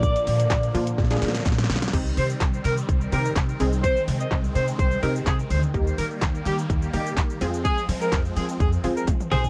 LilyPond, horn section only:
\new Staff \with { instrumentName = "Horn section" } { \time 4/4 \key c \minor \tempo 4 = 126 r1 | r8 c''16 r8. bes'16 r8. bes'8 r4 | c''8 r16 ees''8 r16 c''16 r16 c''8 bes'16 r16 aes'16 r16 c''16 r16 | r8 bes'16 r8. g'16 r8. g'8 r4 |
aes'8 r16 bes'8 r16 aes'16 r16 aes'16 r8 bes'16 r8 c''16 r16 | }